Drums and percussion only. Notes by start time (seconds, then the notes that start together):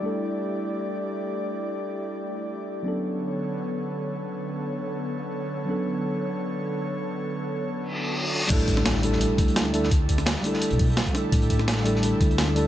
8.50 kick, closed hi-hat, crash
8.60 closed hi-hat
8.68 kick, closed hi-hat
8.77 snare
8.85 snare, closed hi-hat
8.95 snare
9.03 closed hi-hat
9.12 snare
9.21 closed hi-hat
9.38 kick, closed hi-hat
9.48 closed hi-hat
9.56 snare, closed hi-hat
9.65 snare
9.74 closed hi-hat
9.83 snare
9.91 kick, closed hi-hat
10.09 kick, closed hi-hat
10.18 snare, closed hi-hat
10.26 snare, closed hi-hat
10.36 snare
10.44 closed hi-hat
10.54 snare
10.61 closed hi-hat
10.71 closed hi-hat
10.79 kick, closed hi-hat, open hi-hat
10.97 snare, closed hi-hat
11.06 kick, closed hi-hat
11.15 snare, closed hi-hat
11.32 kick, closed hi-hat
11.42 closed hi-hat
11.50 kick, closed hi-hat
11.59 snare
11.68 snare, closed hi-hat
11.77 snare
11.86 closed hi-hat
11.96 snare
12.03 closed hi-hat
12.21 kick, closed hi-hat
12.31 closed hi-hat
12.38 snare, closed hi-hat
12.48 snare
12.56 closed hi-hat